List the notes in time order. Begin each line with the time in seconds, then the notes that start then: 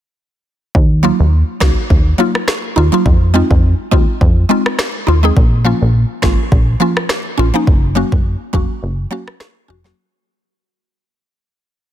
0.75 D#2, kick
1.03 F#3 A#3 D#4 F4
1.20 D#2
1.60 C#2 F#3 A#3 D#4 F#4, kick, cross-stick, snare
1.90 D#2, kick
2.18 F#3 A#3 D#4 F4
2.35 cross-stick
2.48 cross-stick, snare
2.76 D#2 D#4 F4
2.92 F#3 A#3 D#4 F4
3.06 F2, kick
3.34 G#3 C4 D#4 F4
3.51 F2, kick
3.91 D#2 G#3 C4 D#4 F4, kick
4.21 F2, kick
4.49 G#3 C4 D#4 F4
4.66 cross-stick
4.79 cross-stick, snare
5.07 D#2 D#4 F4
5.23 G#3 C4 D#4 G#4
5.37 A#1, kick
5.65 F3 A#3 C#4 F4
5.82 A#1
6.22 G#1 F3 A#3 C#4 F4, kick, cross-stick, snare
6.52 A#1, kick
6.80 F3 A#3 C#4 F4
6.97 cross-stick
7.09 cross-stick, snare
7.38 A#1 C#4 F4
7.54 F3 A#3 C#4 D#4
7.67 F#1, kick
7.95 F#3 A#3 C#4 F#4
8.12 F#1, kick
8.53 F1 F#3 A#3 C#4 F#4, kick
8.83 F#1
9.11 F#3 A#3 C#4 F#4
9.28 cross-stick
9.40 cross-stick, snare
9.68 F1 C#4 F#4
9.84 F#3 A#3 C#4 F#4, snare